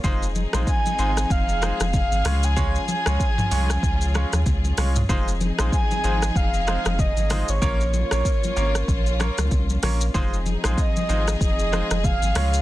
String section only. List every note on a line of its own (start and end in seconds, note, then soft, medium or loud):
0.04 2.23 F3 medium
0.04 2.23 C4 medium
0.04 2.23 D#4 medium
0.04 5.05 G#4 medium
2.25 5.07 F3 medium
2.25 5.06 C#4 medium
2.25 5.07 F4 medium
5.09 7.59 F3 medium
5.09 7.59 C4 medium
5.09 7.59 D#4 medium
5.09 7.59 G#4 medium
7.62 10.12 A#3 medium
7.62 10.12 C#4 medium
7.62 10.12 F4 medium
10.15 12.33 F3 medium
10.15 12.33 C4 medium
10.15 12.33 D#4 medium
10.15 12.62 G#4 medium
12.36 12.62 F3 medium
12.36 12.62 C#4 medium
12.36 12.62 F4 medium